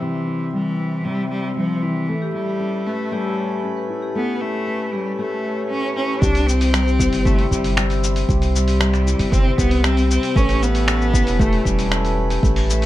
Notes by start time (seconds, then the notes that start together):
Already playing: C3 G3 C4 E4 G4 C5
0.02 C3 E3
0.27 E4
0.53 E3 G3
0.79 C4
1.05 C3 G3
1.31 G3
1.57 F3 G3
1.82 E3 E4
2.08 A2 A3
2.22 G4
2.34 G3 E4
2.46 G4 B4
2.57 A3 C#4
2.86 A3 C#4 B4
3.11 G3 A3 C#4 G4
3.38 G4
3.64 C#4
3.77 B4
3.89 E4
4.02 G4
4.15 A3 B3
4.29 G4
4.41 A3 E4
4.67 C#4 B4
4.93 G3 C#4 G4
5.19 A3 G4
5.45 C#5
5.58 G4
5.70 C#4
5.84 G4
5.96 C#4 E4 G4
6.10 G4
6.22 C2 C3 D4 G4, kick, cabasa
6.35 G3, open hi-hat, cabasa
6.47 C4, cabasa
6.61 C5, open hi-hat, cabasa
6.67 C5
6.73 G3, finger snap, cabasa
6.87 G4, cabasa
6.99 E4, kick, cabasa
7.13 G1 G4, open hi-hat, cabasa
7.25 C3 A3 E4, kick, cabasa
7.39 open hi-hat
7.51 G1 G3 C4 C5, kick, cabasa
7.64 open hi-hat, cabasa
7.77 G3 G4, finger snap, cabasa
7.90 open hi-hat, cabasa
8.03 G4, cabasa
8.16 open hi-hat, cabasa
8.29 C2 C3 G4, kick, cabasa
8.42 C5, open hi-hat, cabasa
8.55 G3, cabasa
8.68 G4, open hi-hat, cabasa
8.81 G3, finger snap, cabasa
8.94 G4, finger snap, cabasa
9.07 E4, cabasa
9.19 G1, kick, open hi-hat, cabasa
9.32 C3 C4 C5, kick, cabasa
9.58 C2 B3 C4 G4, kick, cabasa
9.71 open hi-hat
9.84 G3 C4 G4, finger snap, cabasa
9.97 open hi-hat, cabasa
10.10 C4, cabasa
10.23 C5, open hi-hat, cabasa
10.36 A1 A2 A3 C#4 B4, kick, cabasa
10.49 G4, open hi-hat, cabasa
10.62 B3, cabasa
10.67 C#4
10.75 G4 B4, open hi-hat, cabasa
10.88 A3 C#4, finger snap, cabasa
11.02 cabasa
11.13 E4 B4, kick, cabasa
11.27 E1, open hi-hat, cabasa
11.39 A3 G4, kick, cabasa
11.53 open hi-hat
11.65 E1 G3 C#4 G4, kick, cabasa
11.79 open hi-hat, cabasa
11.91 C#4, finger snap, cabasa
12.04 B4, open hi-hat, cabasa
12.30 G4, open hi-hat, cabasa
12.43 A1 A3 B4, kick, cabasa
12.56 G4, open hi-hat, cabasa
12.69 A3, cabasa
12.82 open hi-hat